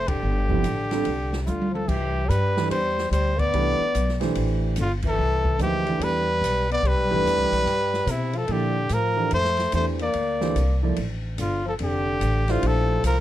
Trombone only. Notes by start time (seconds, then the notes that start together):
0.08 D3
1.42 C3
1.46 D3
1.71 F3
1.86 E3
2.26 G3
2.69 G3
3.10 G3
3.37 B3
4.76 D3
5.04 E3
5.60 E3
6.02 G3
6.71 B3
6.85 G3
8.07 C3
8.35 F3
8.49 D3
8.92 F3
9.32 A3
9.74 A3
10.01 A#3
11.38 D3
11.66 F3
11.80 D3
12.49 D3
12.64 F3
13.05 F3